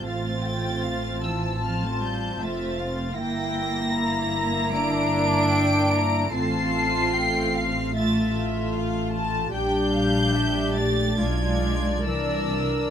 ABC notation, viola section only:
X:1
M:4/4
L:1/8
Q:1/4=75
K:F
V:1 name="Viola section"
[CF]4 [CF]2 [CF]2 | [B,E]8 | [A,F]4 [A,F]4 | [DG]4 [DF]2 [DB]2 |]